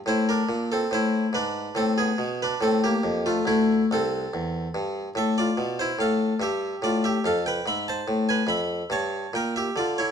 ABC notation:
X:1
M:12/8
L:1/8
Q:3/8=95
K:Aphr
V:1 name="Harpsichord"
[Ec] [DB]2 [CA] [Ec]2 [D=B]2 [CA] [=B,^G]2 [DB] | [CA] [B,G]2 [A,F] [A,E]2 [CA]6 | [K:Am] [Ae] [Fd]2 [Ec] [Af]2 [Ge]2 [Fd] [Ge] [Af] [Bg] | [eb] [ca]2 [B^g] [eb]2 [^ca]2 [_B=g] [Ge] [Fd] [Ec] |]
V:2 name="Harpsichord" clef=bass
A,,2 B,,2 A,,2 ^G,,2 A,,2 =B,,2 | A,,2 F,,2 D,,2 C,,2 E,,2 G,,2 | [K:Am] A,,2 B,,2 A,,2 G,,2 A,,2 F,,2 | ^G,,2 A,,2 F,,2 =G,,2 _B,,2 D,2 |]